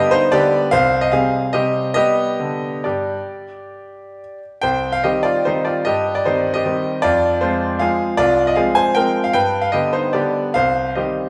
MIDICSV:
0, 0, Header, 1, 2, 480
1, 0, Start_track
1, 0, Key_signature, -3, "minor"
1, 0, Tempo, 393185
1, 877, Time_signature, 3, 2, 24, 8
1, 1359, Tempo, 421941
1, 2319, Tempo, 445765
1, 4719, Tempo, 422238
1, 6159, Tempo, 399202
1, 7599, Tempo, 386598
1, 11439, Tempo, 413223
1, 13236, End_track
2, 0, Start_track
2, 0, Title_t, "Grand piano"
2, 0, Program_c, 0, 0
2, 0, Note_on_c, 0, 50, 42
2, 0, Note_on_c, 0, 55, 47
2, 0, Note_on_c, 0, 59, 49
2, 0, Note_on_c, 0, 67, 68
2, 0, Note_on_c, 0, 75, 95
2, 135, Note_on_c, 0, 72, 100
2, 140, Note_off_c, 0, 67, 0
2, 149, Note_on_c, 0, 63, 73
2, 152, Note_off_c, 0, 75, 0
2, 355, Note_off_c, 0, 55, 0
2, 358, Note_off_c, 0, 50, 0
2, 360, Note_off_c, 0, 59, 0
2, 380, Note_off_c, 0, 63, 0
2, 387, Note_on_c, 0, 74, 97
2, 391, Note_off_c, 0, 72, 0
2, 401, Note_on_c, 0, 67, 73
2, 402, Note_on_c, 0, 50, 55
2, 411, Note_on_c, 0, 55, 52
2, 419, Note_on_c, 0, 59, 54
2, 829, Note_off_c, 0, 50, 0
2, 834, Note_off_c, 0, 55, 0
2, 839, Note_off_c, 0, 59, 0
2, 843, Note_off_c, 0, 67, 0
2, 869, Note_off_c, 0, 74, 0
2, 870, Note_on_c, 0, 77, 111
2, 885, Note_on_c, 0, 72, 81
2, 890, Note_on_c, 0, 36, 74
2, 1099, Control_c, 0, 64, 127
2, 1214, Note_off_c, 0, 72, 0
2, 1232, Note_off_c, 0, 77, 0
2, 1237, Note_on_c, 0, 75, 86
2, 1352, Note_off_c, 0, 36, 0
2, 1360, Note_off_c, 0, 75, 0
2, 1363, Note_on_c, 0, 77, 85
2, 1368, Control_c, 0, 64, 0
2, 1372, Note_on_c, 0, 48, 41
2, 1376, Note_on_c, 0, 55, 42
2, 1379, Note_on_c, 0, 68, 61
2, 1380, Note_on_c, 0, 60, 50
2, 1797, Note_off_c, 0, 48, 0
2, 1799, Note_off_c, 0, 55, 0
2, 1801, Note_off_c, 0, 60, 0
2, 1814, Note_off_c, 0, 68, 0
2, 1832, Note_on_c, 0, 75, 88
2, 1838, Note_off_c, 0, 77, 0
2, 1845, Note_on_c, 0, 48, 48
2, 1845, Note_on_c, 0, 67, 66
2, 1849, Note_on_c, 0, 55, 48
2, 1850, Note_on_c, 0, 60, 50
2, 2278, Note_off_c, 0, 48, 0
2, 2280, Note_off_c, 0, 55, 0
2, 2281, Note_off_c, 0, 60, 0
2, 2285, Note_off_c, 0, 75, 0
2, 2290, Note_off_c, 0, 67, 0
2, 2302, Note_on_c, 0, 75, 105
2, 2318, Note_on_c, 0, 55, 58
2, 2321, Note_on_c, 0, 67, 72
2, 2323, Note_on_c, 0, 59, 49
2, 2542, Control_c, 0, 64, 127
2, 2697, Note_off_c, 0, 55, 0
2, 2698, Note_off_c, 0, 59, 0
2, 2792, Note_on_c, 0, 50, 46
2, 3127, Note_off_c, 0, 50, 0
2, 3227, Note_off_c, 0, 67, 0
2, 3261, Note_off_c, 0, 75, 0
2, 3270, Note_on_c, 0, 74, 56
2, 3286, Control_c, 0, 64, 0
2, 3286, Note_on_c, 0, 67, 51
2, 3289, Note_on_c, 0, 43, 53
2, 3613, Note_off_c, 0, 43, 0
2, 3934, Control_c, 0, 64, 127
2, 4736, Control_c, 0, 64, 0
2, 4935, Note_off_c, 0, 67, 0
2, 4972, Note_off_c, 0, 74, 0
2, 5207, Note_on_c, 0, 79, 95
2, 5223, Note_on_c, 0, 36, 57
2, 5224, Note_on_c, 0, 72, 69
2, 5436, Control_c, 0, 64, 127
2, 5551, Note_off_c, 0, 72, 0
2, 5559, Note_on_c, 0, 77, 88
2, 5567, Note_off_c, 0, 79, 0
2, 5681, Note_off_c, 0, 36, 0
2, 5684, Note_off_c, 0, 77, 0
2, 5684, Note_on_c, 0, 75, 74
2, 5692, Note_on_c, 0, 51, 38
2, 5696, Note_on_c, 0, 67, 55
2, 5700, Note_on_c, 0, 55, 36
2, 5703, Note_on_c, 0, 60, 38
2, 5706, Control_c, 0, 64, 0
2, 5904, Note_on_c, 0, 74, 80
2, 5913, Note_off_c, 0, 67, 0
2, 5921, Note_on_c, 0, 65, 62
2, 5923, Note_off_c, 0, 75, 0
2, 6115, Note_off_c, 0, 51, 0
2, 6119, Note_off_c, 0, 55, 0
2, 6121, Note_off_c, 0, 60, 0
2, 6141, Note_off_c, 0, 65, 0
2, 6149, Note_off_c, 0, 74, 0
2, 6157, Note_on_c, 0, 72, 76
2, 6176, Note_on_c, 0, 51, 43
2, 6176, Note_on_c, 0, 55, 43
2, 6177, Note_on_c, 0, 60, 46
2, 6180, Note_on_c, 0, 63, 59
2, 6393, Note_on_c, 0, 74, 66
2, 6398, Note_off_c, 0, 63, 0
2, 6404, Note_off_c, 0, 72, 0
2, 6408, Note_on_c, 0, 65, 54
2, 6603, Note_off_c, 0, 55, 0
2, 6604, Note_off_c, 0, 51, 0
2, 6604, Note_off_c, 0, 60, 0
2, 6628, Note_off_c, 0, 65, 0
2, 6634, Note_on_c, 0, 75, 85
2, 6637, Note_off_c, 0, 74, 0
2, 6651, Note_on_c, 0, 43, 59
2, 6654, Note_on_c, 0, 67, 64
2, 6893, Control_c, 0, 64, 127
2, 6979, Note_off_c, 0, 67, 0
2, 6993, Note_off_c, 0, 75, 0
2, 6997, Note_on_c, 0, 74, 74
2, 7107, Note_off_c, 0, 43, 0
2, 7117, Note_off_c, 0, 74, 0
2, 7123, Note_on_c, 0, 72, 71
2, 7130, Note_on_c, 0, 63, 53
2, 7131, Note_on_c, 0, 51, 40
2, 7138, Note_on_c, 0, 55, 38
2, 7148, Note_on_c, 0, 60, 43
2, 7460, Note_off_c, 0, 63, 0
2, 7462, Note_on_c, 0, 75, 85
2, 7481, Note_off_c, 0, 72, 0
2, 7483, Note_on_c, 0, 67, 55
2, 7559, Note_off_c, 0, 51, 0
2, 7563, Note_off_c, 0, 55, 0
2, 7568, Note_off_c, 0, 60, 0
2, 7596, Note_on_c, 0, 51, 46
2, 7609, Note_on_c, 0, 60, 44
2, 7611, Note_on_c, 0, 55, 44
2, 7613, Control_c, 0, 64, 0
2, 8029, Note_off_c, 0, 51, 0
2, 8037, Note_off_c, 0, 55, 0
2, 8037, Note_off_c, 0, 60, 0
2, 8040, Note_off_c, 0, 67, 0
2, 8059, Note_on_c, 0, 74, 103
2, 8071, Note_off_c, 0, 75, 0
2, 8073, Note_on_c, 0, 65, 77
2, 8083, Note_on_c, 0, 41, 67
2, 8314, Control_c, 0, 64, 127
2, 8508, Note_off_c, 0, 65, 0
2, 8532, Note_off_c, 0, 41, 0
2, 8533, Note_off_c, 0, 74, 0
2, 8541, Note_on_c, 0, 72, 74
2, 8545, Note_on_c, 0, 65, 59
2, 8552, Note_on_c, 0, 53, 46
2, 8558, Note_on_c, 0, 56, 43
2, 8562, Note_on_c, 0, 60, 42
2, 8992, Note_off_c, 0, 53, 0
2, 8995, Note_off_c, 0, 56, 0
2, 8997, Note_off_c, 0, 60, 0
2, 9003, Note_off_c, 0, 65, 0
2, 9020, Note_on_c, 0, 77, 82
2, 9035, Note_off_c, 0, 72, 0
2, 9037, Note_on_c, 0, 53, 51
2, 9038, Note_on_c, 0, 56, 49
2, 9039, Note_on_c, 0, 68, 63
2, 9045, Note_on_c, 0, 60, 48
2, 9047, Control_c, 0, 64, 0
2, 9472, Note_off_c, 0, 53, 0
2, 9473, Note_off_c, 0, 56, 0
2, 9477, Note_off_c, 0, 60, 0
2, 9488, Note_off_c, 0, 68, 0
2, 9491, Note_on_c, 0, 74, 102
2, 9501, Note_on_c, 0, 36, 69
2, 9506, Note_on_c, 0, 65, 85
2, 9512, Note_off_c, 0, 77, 0
2, 9713, Control_c, 0, 64, 127
2, 9836, Note_off_c, 0, 65, 0
2, 9854, Note_off_c, 0, 74, 0
2, 9859, Note_on_c, 0, 75, 73
2, 9964, Note_on_c, 0, 77, 76
2, 9965, Note_off_c, 0, 36, 0
2, 9978, Note_on_c, 0, 68, 58
2, 9982, Note_on_c, 0, 56, 36
2, 9984, Note_off_c, 0, 75, 0
2, 9984, Note_on_c, 0, 53, 40
2, 9987, Note_on_c, 0, 60, 49
2, 10004, Control_c, 0, 64, 0
2, 10206, Note_on_c, 0, 80, 96
2, 10209, Note_off_c, 0, 68, 0
2, 10218, Note_on_c, 0, 72, 74
2, 10219, Note_off_c, 0, 77, 0
2, 10422, Note_off_c, 0, 56, 0
2, 10424, Note_off_c, 0, 53, 0
2, 10425, Note_off_c, 0, 60, 0
2, 10450, Note_off_c, 0, 72, 0
2, 10450, Note_on_c, 0, 79, 97
2, 10462, Note_off_c, 0, 80, 0
2, 10466, Note_on_c, 0, 70, 67
2, 10472, Note_on_c, 0, 56, 45
2, 10473, Note_on_c, 0, 53, 43
2, 10482, Note_on_c, 0, 60, 49
2, 10806, Note_off_c, 0, 70, 0
2, 10813, Note_on_c, 0, 77, 81
2, 10823, Note_off_c, 0, 79, 0
2, 10904, Note_off_c, 0, 53, 0
2, 10904, Note_off_c, 0, 56, 0
2, 10909, Note_off_c, 0, 60, 0
2, 10932, Note_on_c, 0, 79, 100
2, 10939, Note_on_c, 0, 43, 64
2, 10942, Note_off_c, 0, 77, 0
2, 10942, Note_on_c, 0, 71, 74
2, 11165, Control_c, 0, 64, 127
2, 11280, Note_on_c, 0, 77, 74
2, 11283, Note_off_c, 0, 71, 0
2, 11303, Note_off_c, 0, 79, 0
2, 11411, Note_on_c, 0, 75, 81
2, 11417, Note_off_c, 0, 43, 0
2, 11422, Note_off_c, 0, 77, 0
2, 11428, Note_on_c, 0, 50, 38
2, 11429, Note_on_c, 0, 55, 36
2, 11429, Note_on_c, 0, 67, 58
2, 11435, Note_on_c, 0, 59, 42
2, 11456, Control_c, 0, 64, 0
2, 11653, Note_on_c, 0, 72, 76
2, 11656, Note_off_c, 0, 67, 0
2, 11659, Note_on_c, 0, 63, 55
2, 11664, Note_off_c, 0, 75, 0
2, 11867, Note_off_c, 0, 50, 0
2, 11867, Note_off_c, 0, 55, 0
2, 11870, Note_off_c, 0, 59, 0
2, 11888, Note_on_c, 0, 74, 73
2, 11892, Note_off_c, 0, 63, 0
2, 11903, Note_on_c, 0, 67, 61
2, 11907, Note_off_c, 0, 72, 0
2, 11910, Note_on_c, 0, 50, 43
2, 11912, Note_on_c, 0, 55, 39
2, 11914, Note_on_c, 0, 59, 48
2, 12332, Note_off_c, 0, 50, 0
2, 12333, Note_off_c, 0, 55, 0
2, 12334, Note_off_c, 0, 59, 0
2, 12342, Note_off_c, 0, 67, 0
2, 12365, Note_on_c, 0, 77, 98
2, 12367, Note_off_c, 0, 74, 0
2, 12381, Note_on_c, 0, 36, 62
2, 12384, Note_on_c, 0, 72, 72
2, 12607, Control_c, 0, 64, 127
2, 12825, Note_off_c, 0, 72, 0
2, 12843, Note_off_c, 0, 36, 0
2, 12845, Note_on_c, 0, 75, 52
2, 12849, Note_off_c, 0, 77, 0
2, 12857, Note_on_c, 0, 51, 34
2, 12857, Note_on_c, 0, 55, 36
2, 12863, Note_on_c, 0, 67, 45
2, 12864, Note_on_c, 0, 60, 41
2, 12872, Control_c, 0, 64, 0
2, 13215, Note_off_c, 0, 67, 0
2, 13233, Note_off_c, 0, 75, 0
2, 13236, Note_off_c, 0, 51, 0
2, 13236, Note_off_c, 0, 55, 0
2, 13236, Note_off_c, 0, 60, 0
2, 13236, End_track
0, 0, End_of_file